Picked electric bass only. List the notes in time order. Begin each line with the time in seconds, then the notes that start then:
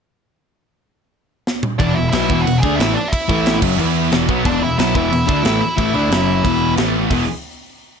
1.80 E1
1.96 E1
2.13 B1
2.30 E1
2.46 E1
2.63 D2
2.80 A1
3.29 A1
3.62 F#1
3.78 E2
4.12 E1
4.29 B1
4.45 E1
4.63 E1
4.79 B1
4.94 E1
5.12 E1
5.29 D2
5.45 A1
5.78 A1
5.94 D2
6.09 F#1
6.45 E1
6.76 A1
7.10 E1